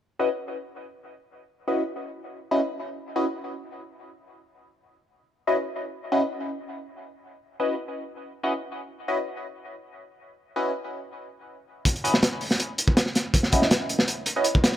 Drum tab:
HH |----------------|----------------|----------------|----------------|
SD |----------------|----------------|----------------|----------------|
BD |----------------|----------------|----------------|----------------|

HH |----------------|----------------|----------------|----------------|
SD |----------------|----------------|----------------|----------------|
BD |----------------|----------------|----------------|----------------|

HH |xxx-x-o-x-x-x-x-|x-x-x-x-x-x-x-x-|
SD |---oo--o----ooo-|-o-oo--o------oo|
BD |o----------o----|o-o----------o--|